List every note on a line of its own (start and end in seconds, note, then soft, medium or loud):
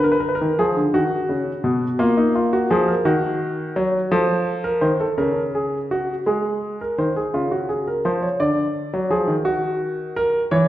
0.00 0.40 D3 medium
0.00 0.12 A#4 medium
0.12 0.20 B4 medium
0.20 0.28 A#4 medium
0.29 0.36 B4 medium
0.35 0.58 A#4 medium
0.41 0.58 D#3 medium
0.59 0.76 F3 medium
0.59 0.81 G#4 medium
0.77 0.94 D3 medium
0.94 1.16 D#3 medium
0.94 1.96 F#4 medium
1.29 1.51 C#3 medium
1.64 1.86 B2 medium
1.99 2.68 A#3 medium
1.99 2.17 F4 medium
2.17 2.34 D#4 medium
2.35 2.52 F4 medium
2.53 2.70 F#4 medium
2.70 2.92 F3 medium
2.70 2.87 G#4 medium
2.88 3.05 A#4 medium
3.05 3.74 D#3 medium
3.05 4.08 F#4 medium
3.76 3.98 F#3 medium
4.12 4.81 F3 medium
4.12 4.63 A4 medium
4.64 4.82 A#4 medium
4.81 5.04 D#3 medium
4.81 4.99 C5 medium
5.00 5.18 A4 medium
5.18 6.23 C#3 medium
5.18 5.40 A#4 medium
5.55 5.77 G#4 medium
5.91 6.13 F#4 medium
6.26 6.96 G#3 medium
6.26 6.79 G#4 medium
6.81 6.98 A#4 medium
6.98 7.20 D#3 medium
6.98 7.16 C5 medium
7.16 7.34 G#4 medium
7.34 8.03 C#3 medium
7.34 7.51 F4 medium
7.51 7.69 F#4 medium
7.69 7.86 G#4 medium
7.88 8.04 A#4 medium
8.05 8.27 F3 medium
8.05 8.22 C5 medium
8.22 8.40 C#5 medium
8.40 8.92 D3 medium
8.40 9.09 D5 medium
8.94 9.11 F#3 medium
9.10 9.28 F3 medium
9.10 9.33 G#4 medium
9.28 10.48 D#3 medium
9.45 10.14 F#4 medium
10.16 10.39 A#4 medium
10.51 10.68 E3 medium
10.51 10.68 C#5 medium